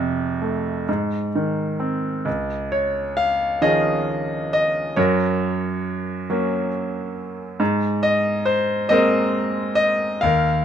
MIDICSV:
0, 0, Header, 1, 2, 480
1, 0, Start_track
1, 0, Key_signature, -5, "major"
1, 0, Tempo, 917431
1, 1185, Time_signature, 6, 3, 24, 8
1, 2136, Tempo, 879765
1, 5719, End_track
2, 0, Start_track
2, 0, Title_t, "Grand piano"
2, 0, Program_c, 0, 0
2, 0, Control_c, 0, 64, 127
2, 0, Note_on_c, 0, 41, 51
2, 0, Note_on_c, 0, 48, 41
2, 0, Note_on_c, 0, 68, 48
2, 0, Note_on_c, 0, 72, 65
2, 218, Note_on_c, 0, 57, 42
2, 441, Note_off_c, 0, 41, 0
2, 445, Note_off_c, 0, 48, 0
2, 453, Note_off_c, 0, 57, 0
2, 463, Note_on_c, 0, 44, 48
2, 467, Control_c, 0, 64, 0
2, 567, Control_c, 0, 64, 127
2, 673, Note_off_c, 0, 72, 0
2, 686, Note_off_c, 0, 68, 0
2, 709, Note_on_c, 0, 51, 36
2, 940, Note_on_c, 0, 60, 37
2, 1166, Note_off_c, 0, 44, 0
2, 1174, Note_off_c, 0, 51, 0
2, 1176, Note_off_c, 0, 60, 0
2, 1178, Note_on_c, 0, 37, 47
2, 1192, Control_c, 0, 64, 0
2, 1296, Control_c, 0, 64, 127
2, 1422, Note_on_c, 0, 73, 57
2, 1657, Note_on_c, 0, 77, 70
2, 1669, Note_off_c, 0, 73, 0
2, 1892, Note_on_c, 0, 51, 35
2, 1893, Note_on_c, 0, 75, 73
2, 1895, Note_on_c, 0, 53, 35
2, 1895, Note_on_c, 0, 68, 49
2, 1899, Note_on_c, 0, 61, 43
2, 1905, Note_off_c, 0, 77, 0
2, 2355, Note_off_c, 0, 75, 0
2, 2381, Note_on_c, 0, 75, 69
2, 2595, Note_off_c, 0, 51, 0
2, 2596, Note_off_c, 0, 37, 0
2, 2597, Note_off_c, 0, 53, 0
2, 2597, Note_off_c, 0, 68, 0
2, 2599, Note_off_c, 0, 61, 0
2, 2605, Note_off_c, 0, 75, 0
2, 2617, Note_on_c, 0, 73, 62
2, 2619, Note_on_c, 0, 42, 56
2, 2621, Note_on_c, 0, 66, 43
2, 2622, Note_on_c, 0, 70, 49
2, 2628, Control_c, 0, 64, 0
2, 2725, Control_c, 0, 64, 127
2, 3344, Note_on_c, 0, 54, 45
2, 3346, Note_on_c, 0, 58, 43
2, 3348, Note_on_c, 0, 61, 48
2, 3553, Note_off_c, 0, 73, 0
2, 3555, Note_off_c, 0, 66, 0
2, 3556, Note_off_c, 0, 70, 0
2, 4035, Note_off_c, 0, 42, 0
2, 4039, Note_off_c, 0, 54, 0
2, 4040, Note_off_c, 0, 58, 0
2, 4041, Note_off_c, 0, 61, 0
2, 4053, Note_on_c, 0, 44, 62
2, 4064, Control_c, 0, 64, 0
2, 4153, Control_c, 0, 64, 127
2, 4288, Note_on_c, 0, 75, 71
2, 4515, Note_off_c, 0, 75, 0
2, 4521, Note_on_c, 0, 72, 68
2, 4759, Note_on_c, 0, 75, 77
2, 4766, Note_on_c, 0, 56, 44
2, 4766, Note_on_c, 0, 58, 42
2, 4769, Note_on_c, 0, 60, 49
2, 4770, Note_off_c, 0, 72, 0
2, 4775, Note_on_c, 0, 70, 51
2, 4778, Note_on_c, 0, 72, 55
2, 5222, Note_off_c, 0, 75, 0
2, 5230, Note_on_c, 0, 75, 77
2, 5466, Note_off_c, 0, 75, 0
2, 5469, Note_off_c, 0, 56, 0
2, 5469, Note_off_c, 0, 58, 0
2, 5470, Note_off_c, 0, 60, 0
2, 5471, Note_off_c, 0, 44, 0
2, 5474, Note_off_c, 0, 70, 0
2, 5475, Note_off_c, 0, 72, 0
2, 5479, Note_on_c, 0, 77, 74
2, 5488, Note_on_c, 0, 39, 53
2, 5502, Control_c, 0, 64, 0
2, 5504, Note_on_c, 0, 70, 53
2, 5601, Control_c, 0, 64, 127
2, 5719, Note_off_c, 0, 39, 0
2, 5719, Note_off_c, 0, 70, 0
2, 5719, Note_off_c, 0, 77, 0
2, 5719, End_track
0, 0, End_of_file